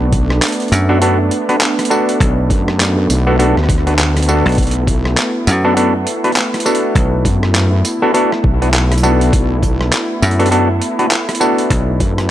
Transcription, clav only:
Already playing: B3 D4 F#4 A4
0.89 B3 D4 F#4 A4
1.02 B3 D4 F#4 A4
1.49 B3 D4 F#4 B4
1.90 B3 D4 F#4 A4
3.27 B3 D4 F#4 A4
3.39 B3 D4 F#4 A4
3.87 B3 D4 F#4 B4
4.29 B3 D4 F#4 A4
5.65 B3 D4 F#4 A4
5.77 B3 D4 F#4 A4
6.24 B3 D4 F#4 B4
6.66 B3 D4 F#4 A4
8.02 B3 D4 F#4 A4
8.14 B3 D4 F#4 A4
8.62 B3 D4 F#4 B4
9.03 B3 D4 F#4 A4
10.39 B3 D4 F#4 A4
10.51 B3 D4 F#4 A4
10.99 B3 D4 F#4 B4
11.40 B3 D4 F#4 A4

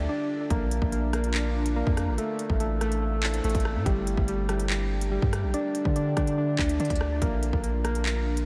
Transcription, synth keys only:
0.09 D4
0.50 A#3
0.92 A#3
1.13 A#3
1.34 A#3
1.76 A#3
2.18 A3
2.60 A3
2.82 A3
3.02 A3
3.45 A3
3.86 G3
4.29 G3
4.49 G3
4.70 G3
5.11 G3
5.54 D4
5.96 D4
6.17 D4
6.38 D4
6.80 D4
7.22 A#3
7.63 A#3
7.84 A#3
8.05 A#3

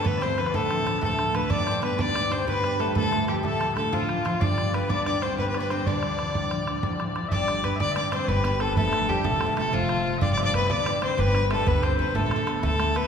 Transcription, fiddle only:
0.06 B4
0.23 C5
0.39 B4
0.55 A4
1.03 A4
1.35 B4
1.51 D5
1.83 B4
2.01 D5
2.32 C5
2.48 B4
2.80 A4
2.96 A4
3.29 G4
3.45 A4
3.77 A4
3.93 F4
4.41 D5
4.74 B4
4.90 D5
5.06 D5
5.22 C5
5.38 B4
5.49 B4
5.60 B4
5.70 C5
5.87 D5
7.32 D5
7.64 B4
7.81 D5
7.97 D5
8.13 C5
8.28 B4
8.61 A4
8.77 A4
9.09 G4
9.25 A4
9.58 A4
9.74 F4
10.22 D5
10.33 D5
10.44 D5
10.56 B4
10.71 D5
11.04 C5
11.20 B4
11.52 A4
11.67 B4
11.83 C5
12.00 B4
12.16 A4
12.64 A4
12.96 B4

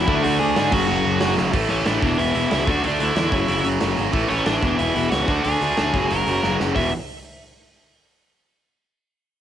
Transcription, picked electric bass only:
0.08 D2
0.25 D2
0.41 D2
0.57 G#2
0.73 F#1
0.88 F#1
1.05 F#1
1.22 F#1
1.39 F#1
1.54 A1
1.71 A1
1.86 A1
2.02 E1
2.20 E1
2.35 E1
2.52 C#2
2.68 D2
2.84 D2
3.00 D2
3.16 E2
3.32 F#1
3.49 F#1
3.66 F#1
3.82 F#1
3.98 G#1
4.14 A1
4.30 A1
4.47 A1
4.63 E1
4.80 E1
4.97 E1
5.11 C#2
5.28 D2
5.46 D2
5.61 D2
5.79 D2
5.94 F#1
6.11 F#1
6.27 F#1
6.45 F#1
6.61 F#1
6.76 E1

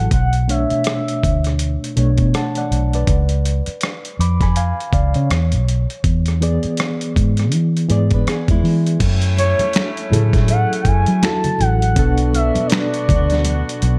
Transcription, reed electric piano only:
Already playing: F#3 E4 F#4 A4
0.48 B2 A3 D4 C#5
1.96 B2 A3 D4 C#5
2.35 F#5 A5
2.58 D5 F#5
2.95 B4 D5
4.20 B5 D6
4.42 G#5 B5
4.57 F5 G#5
4.93 D5 F5
5.16 C#5
6.40 E3 B3 G#4 D5
7.89 E3 B3 G#4 D5
10.10 F#3 E4 G#4 A4
11.22 F#3 E4 F#4 A4
11.96 B2 B3 D4 A4

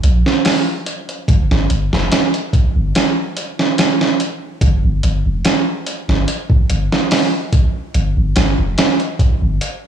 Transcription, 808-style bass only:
0.03 A#1
1.28 G1
1.51 G1
1.70 G1
1.93 F1
2.76 G1
4.61 G1
4.84 G1
5.04 G1
5.25 F1
6.08 G1
6.70 G1
7.94 G1
8.17 G1
8.36 G1
8.59 F1
9.42 G1

